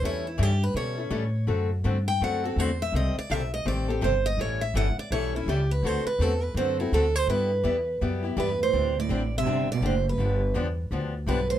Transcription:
X:1
M:4/4
L:1/16
Q:"Swing" 1/4=166
K:Dmix
V:1 name="Steel-string acoustic guitar"
^c2 E2 G2 B2 c8 | z6 g2 f2 A2 c2 e2 | _e2 d2 =e2 _e2 d2 G2 c2 e2 | ^c2 e2 f2 d2 c2 E2 G2 B2 |
c2 B2 A2 B2 c2 E2 A2 c2 | B8 z4 B2 c2- | c2 d4 e4 d2 c2 B2- | B4 z8 B2 c2 |]
V:2 name="Steel-string acoustic guitar"
[E,G,^CEA]2 z2 [E,G,CEA] z3 [E,G,CEA]2 [CEA]2 [E,G,CEA] z3 | [D,A,CFA]2 z2 [D,A,CFA] z3 [D,A,CFA]2 [CFA]2 [D,A,CFA] z3 | [C,_E,G,CGA]2 z2 [C,E,G,CGA] z3 [C,E,G,CGA]2 [G,CGA]2 [C,E,G,CGA] z3 | [E,G,^CEA]2 z2 [E,G,CEA] z3 [E,G,CEA]2 [CEA]2 [E,G,CEA] z3 |
[D,A,CFA]2 z2 [D,A,CFA] z3 [D,A,CFA]2 [CFA]2 [D,A,CFA] z3 | [G,B,EG]2 z2 [G,B,EG] z3 [G,B,EG]2 [B,EG]2 [G,B,EG] z3 | [D,G,CDG]2 z2 [D,G,CDG] z3 [D,G,CDG]2 z2 [D,G,CDG] z3 | [D,=F,B,DG]2 z2 [D,F,B,DG] z3 [D,F,B,DG]2 z2 [D,F,B,DG] z3 |]
V:3 name="Cello" clef=bass
z16 | z16 | z16 | z16 |
z16 | z12 G,,2 A,,2- | A,,2 A,,4 C,4 B,,2 A,,2 G,,2- | G,,4 z8 G,,2 A,,2 |]
V:4 name="Upright bass" clef=bass
E,,4 G,,4 B,,4 A,,4 | F,,4 G,,4 F,,4 E,,4 | C,,2 z2 B,,,4 A,,,4 G,,,4 | A,,,4 G,,,2 z2 B,,,4 ^C,,4 |
D,,2 z2 E,,4 F,,4 D,,4 | G,,4 E,,4 F,,4 E,,4 | D,,4 A,,,4 G,,,4 F,,,4 | G,,,4 E,,4 D,,4 B,,,4 |]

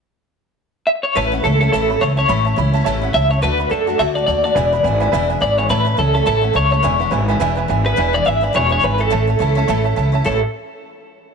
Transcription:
X:1
M:4/4
L:1/8
Q:"Swing" 1/4=211
K:A
V:1 name="Honky-tonk piano"
z8 | [cea] [cef] [cea] [cea] [cea] [ceb] [cea] [cea] | [ceb] [cea] [ceb] [cea] [cea] [cef] [cea] [cea] | [dfa] [dfb] [dfa] [dfa] [dfa] [dfa] [dfa] [dfa] |
[Beg] [Beb] [Beg] [Beg] [Beg] [Beg] [Beg] [Beg] | [cea] [cea] [cea] [cea] [cea] [cef] [cea] [cea] | [Beg] [Bef] [Beg] [Beg] [Beg] [Beg] [Beg] [Beg] | [Beg] [Beg] [Beg] [Beg] [Beg] [Beg] [Beg] [Beg] |
[cea] [cea] [cea] [cea] [cea] [cea] [cea] [cea] | [cea] z6 z |]
V:2 name="Clean electric guitar"
z6 e c | B2 A A A2 c c- | c2 z4 e c | B2 A2 e d d d- |
d6 d c | B2 A A A2 c c- | c2 z4 z B- | B d e d c c B A- |
A6- A z | A z6 z |]
V:3 name="Steel-string acoustic guitar"
z8 | [A,,E,A,CE] [A,CE] [E,A,CE] [A,CE] [A,,E,A,CE] [A,CE] [E,A,CE] [A,CE] | [A,,E,A,CE] [A,CE] [E,A,CE] [A,CE] [A,,E,A,CE] [A,CE] [E,A,CE] [A,CE] | [D,A,DF] [A,DF] [D,A,DF] [A,DF] [D,A,DF] [A,DF] [D,A,DF] [A,DF] |
[E,,B,,E,G,DE] [E,G,DE] [E,G,DE] [E,G,DE] [E,,B,,E,G,DE] [E,G,DE] [E,G,DE] [E,G,DE] | [A,,E,A,CE] [A,CE] [E,A,CE] [A,CE] [A,,E,A,CE] [A,CE] [E,A,CE] [A,CE] | [E,,B,,E,G,DE] [E,G,DE] [E,G,DE] [E,G,DE] [E,,B,,E,G,DE] [E,G,DE] [E,G,DE] [E,G,DE] | [E,,B,,E,G,DE] [E,G,DE] [E,G,DE] [E,G,DE] [E,,B,,E,G,DE] [E,G,DE] [E,G,DE] [E,G,DE] |
[A,,E,A,CE] [A,CE] [E,A,CE] [A,CE] [A,,E,A,CE] [A,CE] [E,A,CE] [A,CE] | [A,,E,A,CE] z6 z |]
V:4 name="Upright bass" clef=bass
z8 | A,,,2 C,,2 A,,,2 C,,2 | A,,,2 C,,2 A,,,2 C,,2 | D,,2 F,,2 D,,2 ^D,,2 |
E,,,2 G,,,2 E,,,2 G,,,2 | A,,,2 C,,2 A,,,2 C,,2 | E,,,2 G,,,2 E,,,2 G,,,2 | E,,,2 G,,,2 E,,,2 G,,,2 |
A,,,2 C,,2 A,,,2 C,,2 | A,,, z6 z |]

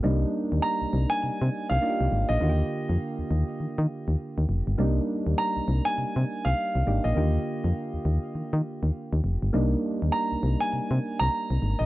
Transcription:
X:1
M:4/4
L:1/16
Q:"Swing 16ths" 1/4=101
K:Cm
V:1 name="Grand piano"
z4 b3 a4 f4 e- | e8- e3 z4 z | z4 b3 a4 f4 e- | e8- e3 z4 z |
z4 b3 a4 b4 e |]
V:2 name="Synth keys"
[G,B,DE]12 [B,DEFG]4 | [D,B,F^FG]16 | [G,B,DE]12- [G,B,DE]2 [B,DEG]2 | [D,B,FG]16 |
[G,B,DE]16 |]
V:3 name="FM bass" clef=bass
C,,2 z E,, z C,, C,, z C, C, z C,, z C,, A,,, B,,, | E,,2 z F,, z E,, E,, z E, E, z E,, z E,, F,,, G,,, | C,,2 z E,, z C,, C,, z C, C, z C,, z C,, A,,, B,,, | E,,2 z F,, z E,, E,, z E, E, z E,, z E,, F,,, G,,, |
C,,2 z E,, z C,, C,, z C, C, z C,, z C,, A,,, B,,, |]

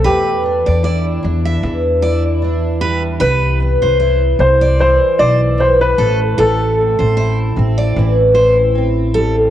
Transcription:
X:1
M:4/4
L:1/16
Q:"Swing 16ths" 1/4=76
K:Am
V:1 name="Steel-string acoustic guitar"
B2 z d d z2 e2 z d z3 B z | B2 z c c z2 d2 z c z3 A z | A2 z c c z2 d2 z c z3 A z |]
V:2 name="Upright piano"
G6 z8 z2 | B6 c2 c2 d2 c B3 | A6 z8 z2 |]
V:3 name="Twelve-string acoustic guitar"
E,,2 D2 E2 D2 E,2 E2 D2 G,2 | z2 B,2 E4 E,2 E2 B,2 A,,2 | A,,2 C2 E2 C2 E,2 E2 C2 G,2 |]
V:4 name="Upright bass" clef=bass
E,,3 E,,3 E,,2 E,,8 | C,,3 C,,3 C,,3 z B,,,4 A,,,2 | A,,,3 A,,,3 A,,,2 A,,,8 |]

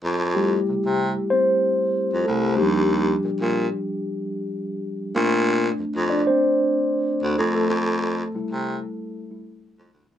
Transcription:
X:1
M:4/4
L:1/16
Q:"Swing 16ths" 1/4=94
K:F
V:1 name="Tine electric piano"
z2 G4 z2 [Cc]6 [A,A]2 | G8 z8 | z6 [Dd] [Cc]6- [Cc] [A,A] [A,A]- | [A,A]6- [A,A] z8 z |]
V:2 name="Tine electric piano"
z2 [G,A,E]12- [G,A,E]2 | [F,G,D]16 | [A,CD]2 z12 z2 | z4 [G,A,E]6 [G,A,E]2 z4 |]
V:3 name="Baritone saxophone" clef=bass
F,,4 C, C,2 z6 F,, C,,2 | _E,,4 B,, B,,2 z8 z | B,,4 F,, F,,2 z6 D,, F,,2 | F,,4 C, C,2 z6 F,, D,, E,, |]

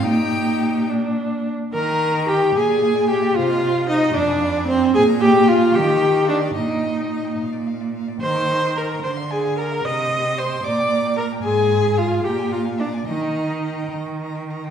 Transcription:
X:1
M:6/8
L:1/16
Q:3/8=74
K:Eb
V:1 name="Violin"
g6 z6 | b g b g b g f d f d f d | c e c e c e f a f a f a | a b a b a b g b g b g b |
b g b g b g f d f d f d | b g b g b g d f d f d f | e g e g e g b g b g b g | c' a c' a c' a b a b a b a |
b g b g b g b g b g b g |]
V:2 name="Violin"
G6 z6 | b4 g2 a4 g2 | f4 e2 d4 c2 | a2 g2 f2 g4 d2 |
e6 z6 | c'4 b2 c'2 a2 b2 | e'4 c'2 d'4 b2 | a4 f2 g2 f2 d2 |
e6 z6 |]
V:3 name="Viola"
E6 D4 z2 | B4 G2 A4 G2 | F4 E2 D4 C2 | A2 G2 F2 G4 D2 |
E6 z6 | c4 B2 c2 A2 B2 | e4 c2 d4 B2 | A4 F2 G2 F2 D2 |
E6 z6 |]
V:4 name="Cello" clef=bass
B,,8- B,,2 z2 | E,6 B,,6 | C,6 F,,6 | B,,6 E,6 |
B,,6 B,,6 | E,6 D,6 | C,6 B,,6 | A,,6 B,,6 |
E,6 E,6 |]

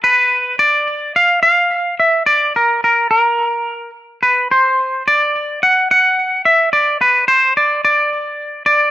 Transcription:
X:1
M:4/4
L:1/8
Q:1/4=108
K:Dmix
V:1 name="Clean electric guitar"
B2 d2 =f f2 e | d _B B B3 z =B | c2 d2 f f2 e | d B c d d3 d |]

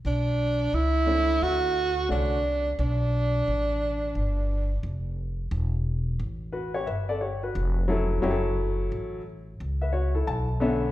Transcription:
X:1
M:4/4
L:1/16
Q:"Swing 16ths" 1/4=88
K:Bm
V:1 name="Upright piano"
z6 [A,CDE]6 [D,A,CF]2 z2 | z16 | z6 [FB] [Gc] [Be] [Ad] [Gc] [FB]2 z [F,CEA]2 | [F,CEGA]6 z3 [Be] [Fc] [EA] a2 [D,B,CAe]2 |]
V:2 name="Tenor saxophone"
D4 E4 F4 D4 | D12 z4 | z16 | z16 |]
V:3 name="Upright bass" clef=bass
B,,,4 C,,4 D,,4 =C,,4 | B,,,4 A,,,4 G,,,4 ^E,,,4 | E,,,4 A,,,4 G,,,4 =F,,,4 | F,,,4 A,,,4 C,,4 B,,,4 |]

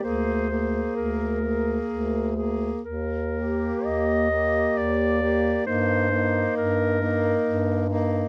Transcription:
X:1
M:3/4
L:1/8
Q:1/4=65
K:Eb
V:1 name="Clarinet"
c2 B3 z | B2 e2 d2 | c2 B3 z |]
V:2 name="Alto saxophone"
A A2 A2 A | z G2 G2 G | E E2 E2 E |]
V:3 name="Tenor saxophone"
B, B,2 B,2 B, | z B,2 B,2 B, | B, B,2 B,2 B, |]
V:4 name="Bass clarinet" clef=bass
D,,2 D,,2 D,,2 | E,,2 E,,2 E,,2 | G,,2 G,,2 G,,2 |]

